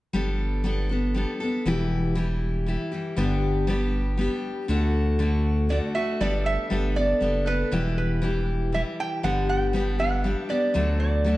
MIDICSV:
0, 0, Header, 1, 4, 480
1, 0, Start_track
1, 0, Key_signature, 1, "major"
1, 0, Tempo, 505476
1, 132, Time_signature, 3, 2, 24, 8
1, 10800, End_track
2, 0, Start_track
2, 0, Title_t, "Resonator guitar played with a steel bar"
2, 0, Program_c, 0, 25
2, 5413, Note_on_c, 0, 74, 81
2, 5478, Note_off_c, 0, 74, 0
2, 5648, Note_on_c, 0, 76, 86
2, 5896, Note_on_c, 0, 74, 88
2, 5897, Note_off_c, 0, 76, 0
2, 6134, Note_on_c, 0, 76, 93
2, 6141, Note_off_c, 0, 74, 0
2, 6611, Note_on_c, 0, 74, 89
2, 6628, Note_off_c, 0, 76, 0
2, 7058, Note_off_c, 0, 74, 0
2, 7095, Note_on_c, 0, 71, 79
2, 7565, Note_off_c, 0, 71, 0
2, 7576, Note_on_c, 0, 71, 66
2, 8021, Note_off_c, 0, 71, 0
2, 8303, Note_on_c, 0, 76, 76
2, 8367, Note_off_c, 0, 76, 0
2, 8547, Note_on_c, 0, 79, 93
2, 8771, Note_off_c, 0, 79, 0
2, 8774, Note_on_c, 0, 78, 94
2, 8997, Note_off_c, 0, 78, 0
2, 9015, Note_on_c, 0, 79, 92
2, 9376, Note_off_c, 0, 79, 0
2, 9376, Note_on_c, 0, 78, 92
2, 9489, Note_off_c, 0, 78, 0
2, 9493, Note_on_c, 0, 78, 92
2, 9969, Note_on_c, 0, 74, 83
2, 9988, Note_off_c, 0, 78, 0
2, 10432, Note_off_c, 0, 74, 0
2, 10443, Note_on_c, 0, 74, 63
2, 10800, Note_off_c, 0, 74, 0
2, 10800, End_track
3, 0, Start_track
3, 0, Title_t, "Steel-string acoustic guitar"
3, 0, Program_c, 1, 25
3, 126, Note_on_c, 1, 55, 74
3, 137, Note_on_c, 1, 59, 72
3, 142, Note_on_c, 1, 62, 68
3, 147, Note_on_c, 1, 69, 75
3, 602, Note_off_c, 1, 55, 0
3, 605, Note_on_c, 1, 55, 59
3, 612, Note_off_c, 1, 59, 0
3, 613, Note_off_c, 1, 62, 0
3, 615, Note_on_c, 1, 59, 60
3, 619, Note_off_c, 1, 69, 0
3, 625, Note_on_c, 1, 62, 62
3, 632, Note_on_c, 1, 69, 68
3, 836, Note_off_c, 1, 69, 0
3, 848, Note_on_c, 1, 69, 47
3, 849, Note_off_c, 1, 55, 0
3, 853, Note_off_c, 1, 62, 0
3, 854, Note_off_c, 1, 59, 0
3, 865, Note_on_c, 1, 62, 42
3, 877, Note_on_c, 1, 59, 42
3, 1087, Note_on_c, 1, 55, 57
3, 1088, Note_off_c, 1, 59, 0
3, 1090, Note_off_c, 1, 69, 0
3, 1093, Note_off_c, 1, 62, 0
3, 1099, Note_on_c, 1, 59, 51
3, 1104, Note_on_c, 1, 62, 50
3, 1115, Note_on_c, 1, 69, 62
3, 1319, Note_off_c, 1, 69, 0
3, 1330, Note_off_c, 1, 55, 0
3, 1330, Note_on_c, 1, 69, 48
3, 1336, Note_off_c, 1, 59, 0
3, 1336, Note_off_c, 1, 62, 0
3, 1347, Note_on_c, 1, 62, 42
3, 1361, Note_on_c, 1, 59, 41
3, 1572, Note_off_c, 1, 69, 0
3, 1572, Note_on_c, 1, 40, 68
3, 1578, Note_on_c, 1, 47, 69
3, 1580, Note_off_c, 1, 62, 0
3, 1582, Note_off_c, 1, 59, 0
3, 1584, Note_on_c, 1, 52, 65
3, 1585, Note_on_c, 1, 55, 80
3, 1592, Note_on_c, 1, 64, 83
3, 1593, Note_on_c, 1, 67, 80
3, 2034, Note_off_c, 1, 52, 0
3, 2045, Note_on_c, 1, 52, 69
3, 2052, Note_off_c, 1, 40, 0
3, 2054, Note_off_c, 1, 55, 0
3, 2055, Note_off_c, 1, 47, 0
3, 2055, Note_off_c, 1, 64, 0
3, 2058, Note_on_c, 1, 55, 67
3, 2066, Note_on_c, 1, 64, 71
3, 2071, Note_off_c, 1, 67, 0
3, 2074, Note_on_c, 1, 67, 65
3, 2519, Note_off_c, 1, 52, 0
3, 2528, Note_off_c, 1, 55, 0
3, 2530, Note_on_c, 1, 52, 53
3, 2537, Note_off_c, 1, 64, 0
3, 2539, Note_on_c, 1, 55, 51
3, 2544, Note_off_c, 1, 67, 0
3, 2549, Note_on_c, 1, 64, 61
3, 2557, Note_on_c, 1, 67, 60
3, 2757, Note_off_c, 1, 67, 0
3, 2769, Note_off_c, 1, 64, 0
3, 2769, Note_on_c, 1, 67, 44
3, 2772, Note_off_c, 1, 52, 0
3, 2776, Note_off_c, 1, 55, 0
3, 2781, Note_on_c, 1, 64, 47
3, 2789, Note_on_c, 1, 55, 39
3, 2797, Note_on_c, 1, 52, 41
3, 3003, Note_off_c, 1, 55, 0
3, 3005, Note_on_c, 1, 43, 70
3, 3009, Note_on_c, 1, 50, 64
3, 3010, Note_off_c, 1, 52, 0
3, 3011, Note_off_c, 1, 67, 0
3, 3014, Note_on_c, 1, 55, 68
3, 3017, Note_off_c, 1, 64, 0
3, 3017, Note_on_c, 1, 59, 75
3, 3024, Note_on_c, 1, 62, 62
3, 3024, Note_on_c, 1, 67, 75
3, 3475, Note_off_c, 1, 55, 0
3, 3485, Note_off_c, 1, 59, 0
3, 3487, Note_on_c, 1, 55, 67
3, 3489, Note_off_c, 1, 43, 0
3, 3491, Note_off_c, 1, 50, 0
3, 3496, Note_on_c, 1, 59, 65
3, 3499, Note_off_c, 1, 67, 0
3, 3504, Note_off_c, 1, 62, 0
3, 3508, Note_on_c, 1, 62, 67
3, 3515, Note_on_c, 1, 67, 68
3, 3953, Note_off_c, 1, 55, 0
3, 3965, Note_off_c, 1, 59, 0
3, 3965, Note_on_c, 1, 55, 52
3, 3976, Note_on_c, 1, 59, 55
3, 3981, Note_off_c, 1, 62, 0
3, 3984, Note_off_c, 1, 67, 0
3, 3985, Note_on_c, 1, 62, 55
3, 3996, Note_on_c, 1, 67, 68
3, 4442, Note_off_c, 1, 55, 0
3, 4446, Note_on_c, 1, 50, 70
3, 4448, Note_off_c, 1, 59, 0
3, 4452, Note_on_c, 1, 57, 72
3, 4455, Note_off_c, 1, 62, 0
3, 4459, Note_on_c, 1, 62, 75
3, 4463, Note_off_c, 1, 67, 0
3, 4467, Note_on_c, 1, 66, 78
3, 4916, Note_off_c, 1, 50, 0
3, 4924, Note_off_c, 1, 57, 0
3, 4927, Note_on_c, 1, 50, 61
3, 4932, Note_off_c, 1, 62, 0
3, 4936, Note_on_c, 1, 57, 66
3, 4940, Note_off_c, 1, 66, 0
3, 4944, Note_on_c, 1, 62, 63
3, 4956, Note_on_c, 1, 66, 61
3, 5393, Note_off_c, 1, 50, 0
3, 5405, Note_off_c, 1, 57, 0
3, 5405, Note_on_c, 1, 50, 56
3, 5413, Note_off_c, 1, 62, 0
3, 5416, Note_on_c, 1, 57, 54
3, 5421, Note_off_c, 1, 66, 0
3, 5425, Note_on_c, 1, 62, 59
3, 5432, Note_on_c, 1, 66, 57
3, 5641, Note_off_c, 1, 66, 0
3, 5649, Note_off_c, 1, 50, 0
3, 5653, Note_on_c, 1, 66, 49
3, 5655, Note_off_c, 1, 57, 0
3, 5657, Note_off_c, 1, 62, 0
3, 5668, Note_on_c, 1, 62, 48
3, 5679, Note_on_c, 1, 57, 39
3, 5892, Note_on_c, 1, 55, 68
3, 5893, Note_off_c, 1, 57, 0
3, 5893, Note_off_c, 1, 62, 0
3, 5893, Note_off_c, 1, 66, 0
3, 5897, Note_on_c, 1, 59, 64
3, 5904, Note_on_c, 1, 62, 65
3, 5911, Note_on_c, 1, 69, 63
3, 6359, Note_off_c, 1, 55, 0
3, 6363, Note_on_c, 1, 55, 62
3, 6370, Note_off_c, 1, 59, 0
3, 6372, Note_off_c, 1, 62, 0
3, 6374, Note_on_c, 1, 59, 67
3, 6382, Note_off_c, 1, 69, 0
3, 6384, Note_on_c, 1, 62, 66
3, 6392, Note_on_c, 1, 69, 65
3, 6595, Note_off_c, 1, 69, 0
3, 6607, Note_on_c, 1, 69, 45
3, 6608, Note_off_c, 1, 55, 0
3, 6611, Note_off_c, 1, 62, 0
3, 6613, Note_off_c, 1, 59, 0
3, 6622, Note_on_c, 1, 62, 41
3, 6635, Note_on_c, 1, 59, 39
3, 6842, Note_on_c, 1, 55, 56
3, 6845, Note_off_c, 1, 59, 0
3, 6850, Note_off_c, 1, 69, 0
3, 6852, Note_off_c, 1, 62, 0
3, 6856, Note_on_c, 1, 59, 52
3, 6863, Note_on_c, 1, 62, 50
3, 6872, Note_on_c, 1, 69, 52
3, 7071, Note_off_c, 1, 69, 0
3, 7082, Note_on_c, 1, 69, 44
3, 7088, Note_off_c, 1, 55, 0
3, 7090, Note_off_c, 1, 62, 0
3, 7095, Note_off_c, 1, 59, 0
3, 7101, Note_on_c, 1, 62, 38
3, 7112, Note_on_c, 1, 59, 36
3, 7325, Note_on_c, 1, 40, 65
3, 7328, Note_off_c, 1, 69, 0
3, 7329, Note_on_c, 1, 47, 71
3, 7331, Note_off_c, 1, 59, 0
3, 7332, Note_on_c, 1, 52, 68
3, 7335, Note_on_c, 1, 55, 78
3, 7337, Note_off_c, 1, 62, 0
3, 7342, Note_on_c, 1, 64, 72
3, 7343, Note_on_c, 1, 67, 68
3, 7791, Note_off_c, 1, 52, 0
3, 7802, Note_on_c, 1, 52, 63
3, 7809, Note_off_c, 1, 40, 0
3, 7810, Note_off_c, 1, 55, 0
3, 7811, Note_off_c, 1, 47, 0
3, 7811, Note_off_c, 1, 64, 0
3, 7813, Note_on_c, 1, 55, 64
3, 7822, Note_on_c, 1, 64, 58
3, 7827, Note_off_c, 1, 67, 0
3, 7830, Note_on_c, 1, 67, 65
3, 8274, Note_off_c, 1, 52, 0
3, 8285, Note_on_c, 1, 52, 49
3, 8288, Note_off_c, 1, 55, 0
3, 8298, Note_off_c, 1, 64, 0
3, 8300, Note_on_c, 1, 55, 52
3, 8302, Note_off_c, 1, 67, 0
3, 8309, Note_on_c, 1, 64, 63
3, 8315, Note_on_c, 1, 67, 63
3, 8762, Note_off_c, 1, 55, 0
3, 8767, Note_on_c, 1, 43, 64
3, 8769, Note_off_c, 1, 52, 0
3, 8771, Note_on_c, 1, 50, 62
3, 8774, Note_off_c, 1, 67, 0
3, 8774, Note_on_c, 1, 55, 67
3, 8779, Note_on_c, 1, 59, 61
3, 8781, Note_off_c, 1, 64, 0
3, 8784, Note_on_c, 1, 62, 73
3, 8786, Note_on_c, 1, 67, 63
3, 9229, Note_off_c, 1, 55, 0
3, 9241, Note_on_c, 1, 55, 61
3, 9242, Note_off_c, 1, 59, 0
3, 9250, Note_off_c, 1, 43, 0
3, 9252, Note_off_c, 1, 50, 0
3, 9253, Note_on_c, 1, 59, 66
3, 9260, Note_off_c, 1, 67, 0
3, 9261, Note_off_c, 1, 62, 0
3, 9265, Note_on_c, 1, 62, 71
3, 9272, Note_on_c, 1, 67, 68
3, 9472, Note_off_c, 1, 67, 0
3, 9483, Note_on_c, 1, 67, 42
3, 9485, Note_off_c, 1, 62, 0
3, 9487, Note_off_c, 1, 55, 0
3, 9493, Note_off_c, 1, 59, 0
3, 9497, Note_on_c, 1, 62, 40
3, 9505, Note_on_c, 1, 59, 39
3, 9515, Note_on_c, 1, 55, 39
3, 9713, Note_off_c, 1, 55, 0
3, 9724, Note_off_c, 1, 59, 0
3, 9725, Note_on_c, 1, 55, 57
3, 9728, Note_off_c, 1, 67, 0
3, 9732, Note_off_c, 1, 62, 0
3, 9735, Note_on_c, 1, 59, 51
3, 9743, Note_on_c, 1, 62, 54
3, 9752, Note_on_c, 1, 67, 60
3, 9948, Note_off_c, 1, 67, 0
3, 9958, Note_off_c, 1, 62, 0
3, 9959, Note_on_c, 1, 67, 43
3, 9967, Note_off_c, 1, 59, 0
3, 9969, Note_off_c, 1, 55, 0
3, 9969, Note_on_c, 1, 62, 47
3, 9978, Note_on_c, 1, 59, 41
3, 9986, Note_on_c, 1, 55, 39
3, 10198, Note_on_c, 1, 50, 74
3, 10200, Note_off_c, 1, 55, 0
3, 10203, Note_off_c, 1, 62, 0
3, 10204, Note_on_c, 1, 54, 65
3, 10207, Note_off_c, 1, 59, 0
3, 10207, Note_off_c, 1, 67, 0
3, 10211, Note_on_c, 1, 57, 69
3, 10214, Note_on_c, 1, 62, 76
3, 10219, Note_on_c, 1, 66, 68
3, 10666, Note_off_c, 1, 54, 0
3, 10678, Note_on_c, 1, 54, 57
3, 10680, Note_off_c, 1, 57, 0
3, 10686, Note_off_c, 1, 50, 0
3, 10691, Note_on_c, 1, 57, 59
3, 10693, Note_off_c, 1, 62, 0
3, 10697, Note_off_c, 1, 66, 0
3, 10697, Note_on_c, 1, 62, 65
3, 10707, Note_on_c, 1, 66, 67
3, 10800, Note_off_c, 1, 54, 0
3, 10800, Note_off_c, 1, 57, 0
3, 10800, Note_off_c, 1, 62, 0
3, 10800, Note_off_c, 1, 66, 0
3, 10800, End_track
4, 0, Start_track
4, 0, Title_t, "Sub bass"
4, 0, Program_c, 2, 38
4, 134, Note_on_c, 2, 31, 73
4, 1195, Note_off_c, 2, 31, 0
4, 1572, Note_on_c, 2, 28, 77
4, 2634, Note_off_c, 2, 28, 0
4, 3013, Note_on_c, 2, 31, 80
4, 4074, Note_off_c, 2, 31, 0
4, 4452, Note_on_c, 2, 38, 79
4, 5513, Note_off_c, 2, 38, 0
4, 5893, Note_on_c, 2, 31, 77
4, 6247, Note_off_c, 2, 31, 0
4, 6375, Note_on_c, 2, 31, 91
4, 6782, Note_off_c, 2, 31, 0
4, 6848, Note_on_c, 2, 30, 72
4, 7258, Note_off_c, 2, 30, 0
4, 7331, Note_on_c, 2, 28, 80
4, 8393, Note_off_c, 2, 28, 0
4, 8772, Note_on_c, 2, 31, 82
4, 9834, Note_off_c, 2, 31, 0
4, 10212, Note_on_c, 2, 38, 79
4, 10800, Note_off_c, 2, 38, 0
4, 10800, End_track
0, 0, End_of_file